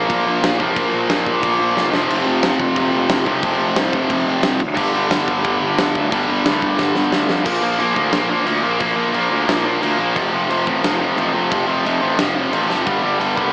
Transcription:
Already playing: A#2 F3 A#3
0.10 A#1, kick, crash
0.26 A#1
0.42 A#1, snare, crash
0.58 F1 A#2 F3 A#3, kick
0.76 A#1, kick, crash
0.92 A#1
1.09 F2, snare, crash
1.26 A#1, kick
1.43 A#1, kick, crash
1.60 A#1
1.77 F1, snare
1.91 F1 F2 C3 F3, snare
2.10 F1, crash
2.27 F1
2.43 F1, snare, crash
2.60 F1, kick
2.76 F1, kick, crash
2.93 F1
3.09 F1, snare, crash
3.25 C2 F2 C3 F3, kick
3.43 F1, kick, crash
3.59 F1
3.76 C2, snare, crash
3.93 F1, kick
4.10 F1, kick, crash
4.27 F1
4.43 C2, snare, crash
4.60 D2, kick
4.75 G1 G2 D3 G3, kick, crash
4.95 G1
5.11 G1, snare, crash
5.28 G1, kick
5.44 G1, kick, crash
5.62 G1
5.78 G1, snare, crash
5.95 D2, kick
6.10 G1 G2 D3 G3, kick, crash
6.29 G1
6.46 D2, snare, crash
6.62 G1, kick
6.79 G1, kick, snare
6.95 G1, snare
7.11 D2, snare
7.29 F2, snare
7.45 A#1 A#2 F3 A#3, kick, crash
7.62 A#1 A#2 F3 A#3
7.79 A#1 A#2 F3 A#3, crash
7.95 D2 A#2 F3 A#3, kick
8.12 A#1 A#2 F3 A#3, snare, crash
8.29 A#2 F3 A#3
8.46 D2 A#2 F3 A#3, crash
8.62 A#1 A#2 F3 A#3
8.79 A#1 A#2 F3 A#3, kick, crash
8.96 A#1 A#2 F3 A#3
9.13 A#1 A#2 F3 A#3, crash
9.30 D2 A#2 F3 A#3
9.47 A#1 A#2 F3 A#3, snare, crash
9.64 A#2 F3 A#3
9.81 D2 A#2 F3 A#3, crash
9.99 A#1 A#2 F3 A#3
10.15 F1 F2 C3 F3, kick, crash
10.33 F1 F2 C3 F3
10.49 F1 F2 C3 F3, crash
10.66 A1 F2 C3 F3, kick
10.83 F1 F2 C3 F3, snare, crash
11.00 F2 C3 F3
11.17 A1 F2 C3 F3, crash
11.34 F1 F2 C3 F3
11.51 F1 F2 C3 F3, kick, crash
11.68 F1 F2 C3 F3
11.85 F1 F2 C3 F3, crash
12.02 A1 F2 C3 F3
12.18 F1 F2 C3 F3, snare, crash
12.35 F2 C3 F3
12.52 A1 F2 C3 F3, crash
12.69 F1 F2 C3 F3, snare
12.85 G1 G2 D3 G3, kick, crash
13.03 G1 G2 D3 G3
13.19 G1 G2 D3 G3, crash
13.36 C2 G2 D3 G3, kick

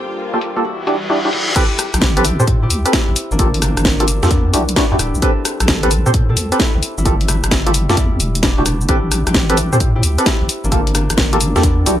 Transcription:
Already playing: G3 C4 D4 F4 G4 A4 A#4 C5 G5
0.11 A#3, shaker
0.18 shaker
0.34 A#3 F4 G4 A4
0.41 open hi-hat, shaker
0.56 A#3 F4 G4 A4, shaker
0.64 E3 E4 F#4 G4 B4, reverse cymbal, shaker
0.81 D5
0.87 G3 D4 E4 F#4 G4, open hi-hat, shaker
1.02 shaker
1.07 D4 E4 F#4 G4 F#5, shaker
1.25 D4 E4 F#4 G4
1.33 E4, open hi-hat, shaker
1.48 shaker
1.56 C4 E4 G4 A4 B4, kick, closed hi-hat, crash, shaker
1.79 cross-stick, open hi-hat, shaker
1.94 A1 E4 G4, cross-stick, closed hi-hat, shaker
2.02 kick, snare, shaker
2.17 C4 G4 A4 B4, closed hi-hat
2.24 E4 G4, open hi-hat, shaker
2.40 A2 C4 G4 A4 C5, shaker
2.47 kick, closed hi-hat, shaker
2.62 E4 G4
2.70 D2, open hi-hat, shaker
2.85 C4 G4 A4 B4, closed hi-hat, shaker
2.93 C4 E4, kick, snare, closed hi-hat, shaker
3.08 A1
3.16 open hi-hat, shaker
3.31 G1 A#3 D4, shaker
3.39 A#3 F4 G4 A4, kick, closed hi-hat, shaker
3.54 open hi-hat
3.62 A#3 D4, cross-stick, open hi-hat, shaker
3.77 G1, cross-stick, closed hi-hat, shaker
3.85 kick, snare, shaker
4.00 A#3 D4 F4 G4 A4, closed hi-hat
4.08 open hi-hat, shaker
4.23 E2 A#3 F4 G4 A4, snare, shaker
4.31 B3 D4, kick, closed hi-hat, shaker
4.54 B1 D4 E4 F#4 G4, open hi-hat, shaker
4.69 closed hi-hat, shaker
4.76 B3 D4 E4 F#4 G4, kick, snare, closed hi-hat, shaker
4.92 E2 D4 E4 F#4 G4
4.99 D1 E4 G4, cross-stick, open hi-hat, shaker
5.15 B1, shaker
5.22 C4 G4 A4 B4, kick, closed hi-hat, shaker
5.45 cross-stick, open hi-hat, shaker
5.60 A1 C4 A4, cross-stick, closed hi-hat, shaker
5.68 kick, snare, shaker
5.83 C4 G4 A4 B4, closed hi-hat
5.91 C4 A4, open hi-hat, shaker
6.06 A2 C4 G4 A4 C5, shaker
6.14 kick, closed hi-hat, shaker
6.29 C4 A4
6.37 D2, open hi-hat, shaker
6.52 C4 G4 A4 B4, closed hi-hat, shaker
6.60 C4 E4, kick, snare, closed hi-hat, shaker
6.75 A1
6.83 open hi-hat, shaker
6.98 G1 G3 E4, shaker
7.05 A#3 F4 G4 A4, kick, closed hi-hat, shaker
7.21 open hi-hat
7.28 G3 E4, cross-stick, open hi-hat, shaker
7.44 G1, cross-stick, closed hi-hat, shaker
7.51 kick, snare, shaker
7.66 G3 A#3 E4 F4 G4 A4, closed hi-hat
7.74 open hi-hat, shaker
7.90 E2 A#3 F4 G4 A4, snare, shaker
7.97 G3 E4, kick, closed hi-hat, shaker
8.20 E1, open hi-hat, shaker
8.35 closed hi-hat, shaker
8.43 B3 D4, kick, snare, closed hi-hat, shaker
8.58 E1 D4 E4 F#4 G4
8.66 B3 D4, cross-stick, open hi-hat, shaker
8.81 shaker
8.89 A1 C4 E4 G4 A4 B4, kick, closed hi-hat, shaker
9.12 cross-stick, open hi-hat, shaker
9.27 A1 E4 G4, cross-stick, closed hi-hat, shaker
9.35 kick, snare, shaker
9.50 C4 G4 A4 B4, closed hi-hat
9.57 E4 G4, open hi-hat, shaker
9.73 A2 C4 G4 A4 C5, shaker
9.80 kick, closed hi-hat, shaker
9.95 E4 G4
10.03 D2, open hi-hat, shaker
10.18 C4 G4 A4 B4, closed hi-hat, shaker
10.26 C4 E4, kick, snare, closed hi-hat, shaker
10.41 A1
10.49 open hi-hat, shaker
10.64 G1 A#3 D4, shaker
10.72 A#3 F4 G4 A4, kick, closed hi-hat, shaker
10.87 open hi-hat
10.95 A#3 D4, cross-stick, open hi-hat, shaker
11.10 G1, cross-stick, closed hi-hat, shaker
11.18 kick, snare, shaker
11.33 A#3 D4 F4 G4 A4, closed hi-hat
11.41 open hi-hat, shaker
11.56 E2 A#3 F4 G4 A4, snare, shaker
11.63 B3 D4, kick, closed hi-hat, shaker
11.86 B1 D4 E4 F#4 G4, open hi-hat, shaker

